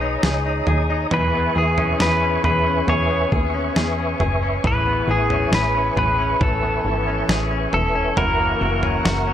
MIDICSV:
0, 0, Header, 1, 6, 480
1, 0, Start_track
1, 0, Tempo, 882353
1, 604, Time_signature, 4, 2, 24, 8
1, 5078, End_track
2, 0, Start_track
2, 0, Title_t, "Tonewheel organ"
2, 0, Program_c, 0, 16
2, 0, Note_on_c, 0, 73, 55
2, 0, Note_on_c, 0, 75, 54
2, 0, Note_on_c, 0, 82, 51
2, 0, Note_on_c, 0, 87, 66
2, 583, Note_off_c, 0, 87, 0
2, 586, Note_off_c, 0, 73, 0
2, 586, Note_off_c, 0, 75, 0
2, 594, Note_off_c, 0, 82, 0
2, 605, Note_on_c, 0, 80, 58
2, 607, Note_on_c, 0, 71, 57
2, 607, Note_on_c, 0, 76, 52
2, 607, Note_on_c, 0, 85, 67
2, 2506, Note_off_c, 0, 76, 0
2, 2527, Note_on_c, 0, 76, 49
2, 4423, Note_off_c, 0, 80, 0
2, 4424, Note_off_c, 0, 71, 0
2, 4426, Note_off_c, 0, 76, 0
2, 4440, Note_on_c, 0, 78, 56
2, 4442, Note_on_c, 0, 70, 55
2, 4443, Note_on_c, 0, 76, 54
2, 5078, Note_off_c, 0, 70, 0
2, 5078, Note_off_c, 0, 76, 0
2, 5078, Note_off_c, 0, 78, 0
2, 5078, Note_off_c, 0, 85, 0
2, 5078, End_track
3, 0, Start_track
3, 0, Title_t, "Pedal steel guitar"
3, 0, Program_c, 1, 26
3, 618, Note_on_c, 1, 71, 85
3, 858, Note_off_c, 1, 71, 0
3, 859, Note_on_c, 1, 68, 73
3, 1098, Note_on_c, 1, 71, 81
3, 1099, Note_off_c, 1, 68, 0
3, 1325, Note_off_c, 1, 71, 0
3, 1332, Note_on_c, 1, 71, 85
3, 1573, Note_off_c, 1, 71, 0
3, 1575, Note_on_c, 1, 73, 88
3, 1793, Note_off_c, 1, 73, 0
3, 2541, Note_on_c, 1, 71, 103
3, 2779, Note_off_c, 1, 71, 0
3, 2779, Note_on_c, 1, 68, 92
3, 3015, Note_off_c, 1, 68, 0
3, 3017, Note_on_c, 1, 71, 87
3, 3249, Note_off_c, 1, 71, 0
3, 3256, Note_on_c, 1, 71, 86
3, 3495, Note_off_c, 1, 71, 0
3, 3497, Note_on_c, 1, 69, 74
3, 3949, Note_off_c, 1, 69, 0
3, 4211, Note_on_c, 1, 69, 80
3, 4448, Note_on_c, 1, 70, 104
3, 4454, Note_off_c, 1, 69, 0
3, 5078, Note_off_c, 1, 70, 0
3, 5078, End_track
4, 0, Start_track
4, 0, Title_t, "Clean electric guitar"
4, 0, Program_c, 2, 27
4, 0, Note_on_c, 2, 59, 53
4, 0, Note_on_c, 2, 68, 56
4, 7, Note_on_c, 2, 63, 58
4, 125, Note_off_c, 2, 68, 0
4, 127, Note_on_c, 2, 68, 60
4, 243, Note_off_c, 2, 63, 0
4, 249, Note_on_c, 2, 63, 53
4, 364, Note_off_c, 2, 68, 0
4, 366, Note_on_c, 2, 68, 52
4, 483, Note_off_c, 2, 63, 0
4, 489, Note_on_c, 2, 63, 55
4, 608, Note_on_c, 2, 52, 71
4, 610, Note_off_c, 2, 68, 0
4, 612, Note_on_c, 2, 68, 60
4, 655, Note_off_c, 2, 63, 0
4, 727, Note_off_c, 2, 59, 0
4, 729, Note_on_c, 2, 59, 56
4, 843, Note_off_c, 2, 68, 0
4, 845, Note_on_c, 2, 68, 57
4, 968, Note_on_c, 2, 61, 55
4, 1086, Note_off_c, 2, 68, 0
4, 1088, Note_on_c, 2, 68, 59
4, 1207, Note_off_c, 2, 61, 0
4, 1209, Note_on_c, 2, 61, 53
4, 1326, Note_off_c, 2, 68, 0
4, 1328, Note_on_c, 2, 68, 50
4, 1449, Note_off_c, 2, 61, 0
4, 1451, Note_on_c, 2, 61, 57
4, 1570, Note_off_c, 2, 68, 0
4, 1573, Note_on_c, 2, 68, 57
4, 1683, Note_off_c, 2, 59, 0
4, 1686, Note_on_c, 2, 59, 53
4, 1805, Note_off_c, 2, 68, 0
4, 1807, Note_on_c, 2, 68, 58
4, 1925, Note_off_c, 2, 61, 0
4, 1927, Note_on_c, 2, 61, 53
4, 2045, Note_off_c, 2, 68, 0
4, 2047, Note_on_c, 2, 68, 64
4, 2165, Note_off_c, 2, 61, 0
4, 2167, Note_on_c, 2, 61, 49
4, 2286, Note_off_c, 2, 68, 0
4, 2288, Note_on_c, 2, 68, 57
4, 2406, Note_off_c, 2, 61, 0
4, 2408, Note_on_c, 2, 61, 51
4, 2512, Note_off_c, 2, 52, 0
4, 2525, Note_on_c, 2, 52, 69
4, 2527, Note_off_c, 2, 68, 0
4, 2529, Note_on_c, 2, 68, 66
4, 2646, Note_off_c, 2, 59, 0
4, 2648, Note_on_c, 2, 59, 56
4, 2664, Note_off_c, 2, 61, 0
4, 2761, Note_off_c, 2, 68, 0
4, 2767, Note_on_c, 2, 68, 55
4, 2886, Note_on_c, 2, 61, 56
4, 2999, Note_off_c, 2, 68, 0
4, 3005, Note_on_c, 2, 68, 56
4, 3124, Note_off_c, 2, 61, 0
4, 3126, Note_on_c, 2, 61, 55
4, 3239, Note_off_c, 2, 68, 0
4, 3246, Note_on_c, 2, 68, 54
4, 3364, Note_off_c, 2, 61, 0
4, 3366, Note_on_c, 2, 61, 59
4, 3484, Note_off_c, 2, 52, 0
4, 3485, Note_off_c, 2, 68, 0
4, 3486, Note_on_c, 2, 52, 70
4, 3599, Note_off_c, 2, 59, 0
4, 3606, Note_on_c, 2, 59, 54
4, 3845, Note_off_c, 2, 61, 0
4, 3847, Note_on_c, 2, 61, 56
4, 3967, Note_on_c, 2, 68, 58
4, 4083, Note_off_c, 2, 61, 0
4, 4085, Note_on_c, 2, 61, 52
4, 4205, Note_off_c, 2, 68, 0
4, 4323, Note_off_c, 2, 61, 0
4, 4325, Note_on_c, 2, 61, 54
4, 4443, Note_off_c, 2, 52, 0
4, 4445, Note_on_c, 2, 52, 77
4, 4448, Note_on_c, 2, 66, 57
4, 4493, Note_off_c, 2, 59, 0
4, 4565, Note_on_c, 2, 58, 56
4, 4682, Note_off_c, 2, 66, 0
4, 4684, Note_on_c, 2, 66, 60
4, 4801, Note_off_c, 2, 61, 0
4, 4803, Note_on_c, 2, 61, 53
4, 4920, Note_off_c, 2, 66, 0
4, 4922, Note_on_c, 2, 66, 60
4, 5036, Note_off_c, 2, 61, 0
4, 5043, Note_on_c, 2, 61, 48
4, 5078, Note_off_c, 2, 52, 0
4, 5078, Note_off_c, 2, 58, 0
4, 5078, Note_off_c, 2, 61, 0
4, 5078, Note_off_c, 2, 66, 0
4, 5078, End_track
5, 0, Start_track
5, 0, Title_t, "Analog synth bass"
5, 0, Program_c, 3, 38
5, 0, Note_on_c, 3, 35, 83
5, 96, Note_off_c, 3, 35, 0
5, 128, Note_on_c, 3, 37, 102
5, 337, Note_off_c, 3, 37, 0
5, 367, Note_on_c, 3, 39, 82
5, 577, Note_off_c, 3, 39, 0
5, 610, Note_on_c, 3, 40, 101
5, 818, Note_off_c, 3, 40, 0
5, 848, Note_on_c, 3, 40, 93
5, 1058, Note_off_c, 3, 40, 0
5, 1087, Note_on_c, 3, 40, 87
5, 1297, Note_off_c, 3, 40, 0
5, 1327, Note_on_c, 3, 40, 99
5, 1537, Note_off_c, 3, 40, 0
5, 1565, Note_on_c, 3, 40, 100
5, 1776, Note_off_c, 3, 40, 0
5, 1808, Note_on_c, 3, 39, 86
5, 2017, Note_off_c, 3, 39, 0
5, 2046, Note_on_c, 3, 40, 98
5, 2256, Note_off_c, 3, 40, 0
5, 2284, Note_on_c, 3, 30, 93
5, 2495, Note_off_c, 3, 30, 0
5, 2524, Note_on_c, 3, 33, 93
5, 2735, Note_off_c, 3, 33, 0
5, 2762, Note_on_c, 3, 33, 92
5, 2974, Note_off_c, 3, 33, 0
5, 3002, Note_on_c, 3, 33, 98
5, 3214, Note_off_c, 3, 33, 0
5, 3244, Note_on_c, 3, 33, 96
5, 3455, Note_off_c, 3, 33, 0
5, 3485, Note_on_c, 3, 33, 94
5, 3696, Note_off_c, 3, 33, 0
5, 3725, Note_on_c, 3, 32, 83
5, 3936, Note_off_c, 3, 32, 0
5, 3965, Note_on_c, 3, 33, 102
5, 4176, Note_off_c, 3, 33, 0
5, 4205, Note_on_c, 3, 28, 89
5, 4416, Note_off_c, 3, 28, 0
5, 4444, Note_on_c, 3, 30, 91
5, 4655, Note_off_c, 3, 30, 0
5, 4685, Note_on_c, 3, 30, 83
5, 4896, Note_off_c, 3, 30, 0
5, 4923, Note_on_c, 3, 30, 94
5, 5078, Note_off_c, 3, 30, 0
5, 5078, End_track
6, 0, Start_track
6, 0, Title_t, "Drums"
6, 126, Note_on_c, 9, 38, 99
6, 180, Note_off_c, 9, 38, 0
6, 363, Note_on_c, 9, 43, 60
6, 418, Note_off_c, 9, 43, 0
6, 605, Note_on_c, 9, 43, 92
6, 659, Note_off_c, 9, 43, 0
6, 967, Note_on_c, 9, 43, 54
6, 1021, Note_off_c, 9, 43, 0
6, 1089, Note_on_c, 9, 38, 98
6, 1143, Note_off_c, 9, 38, 0
6, 1328, Note_on_c, 9, 43, 60
6, 1383, Note_off_c, 9, 43, 0
6, 1567, Note_on_c, 9, 43, 56
6, 1621, Note_off_c, 9, 43, 0
6, 1807, Note_on_c, 9, 36, 81
6, 1861, Note_off_c, 9, 36, 0
6, 2047, Note_on_c, 9, 38, 113
6, 2101, Note_off_c, 9, 38, 0
6, 2285, Note_on_c, 9, 43, 59
6, 2340, Note_off_c, 9, 43, 0
6, 2525, Note_on_c, 9, 43, 90
6, 2526, Note_on_c, 9, 36, 99
6, 2579, Note_off_c, 9, 43, 0
6, 2580, Note_off_c, 9, 36, 0
6, 2884, Note_on_c, 9, 43, 53
6, 2939, Note_off_c, 9, 43, 0
6, 3007, Note_on_c, 9, 38, 94
6, 3061, Note_off_c, 9, 38, 0
6, 3249, Note_on_c, 9, 43, 61
6, 3304, Note_off_c, 9, 43, 0
6, 3486, Note_on_c, 9, 36, 89
6, 3487, Note_on_c, 9, 43, 60
6, 3541, Note_off_c, 9, 36, 0
6, 3541, Note_off_c, 9, 43, 0
6, 3967, Note_on_c, 9, 38, 110
6, 4022, Note_off_c, 9, 38, 0
6, 4205, Note_on_c, 9, 43, 54
6, 4259, Note_off_c, 9, 43, 0
6, 4445, Note_on_c, 9, 43, 100
6, 4499, Note_off_c, 9, 43, 0
6, 4803, Note_on_c, 9, 43, 55
6, 4857, Note_off_c, 9, 43, 0
6, 4926, Note_on_c, 9, 38, 91
6, 4980, Note_off_c, 9, 38, 0
6, 5078, End_track
0, 0, End_of_file